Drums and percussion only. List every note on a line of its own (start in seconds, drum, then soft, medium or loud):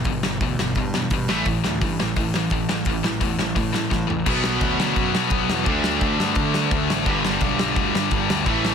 0.04 kick loud
0.04 open hi-hat medium
0.23 snare loud
0.41 kick loud
0.41 open hi-hat soft
0.59 snare loud
0.75 kick loud
0.75 open hi-hat soft
0.94 snare loud
1.10 kick loud
1.10 open hi-hat medium
1.29 snare loud
1.45 kick loud
1.45 open hi-hat medium
1.64 snare loud
1.81 kick loud
1.81 open hi-hat medium
2.00 snare loud
2.16 kick loud
2.16 open hi-hat medium
2.34 snare loud
2.50 kick loud
2.50 open hi-hat medium
2.69 snare loud
2.85 kick loud
2.85 open hi-hat medium
3.04 snare loud
3.21 kick loud
3.21 open hi-hat medium
3.39 snare loud
3.56 kick loud
3.56 open hi-hat medium
3.74 snare loud
3.91 kick loud
3.91 snare medium
4.10 floor tom medium
4.26 kick loud
4.26 crash loud
4.26 crash medium
4.44 snare loud
4.61 kick loud
4.61 crash medium
4.80 snare loud
4.96 kick loud
4.96 crash medium
5.15 snare loud
5.30 kick loud
5.30 crash medium
5.50 snare loud
5.66 kick loud
5.66 crash medium
5.84 snare loud
6.01 kick loud
6.01 crash medium
6.20 snare loud
6.35 kick loud
6.35 crash medium
6.54 snare loud
6.71 kick loud
6.71 crash medium
6.90 snare loud
7.06 kick loud
7.06 crash medium
7.25 snare loud
7.40 kick loud
7.40 crash medium
7.59 snare loud
7.76 kick loud
7.76 crash medium
7.95 snare loud
8.11 kick loud
8.11 crash medium
8.30 snare loud
8.46 kick loud
8.46 crash medium
8.65 snare loud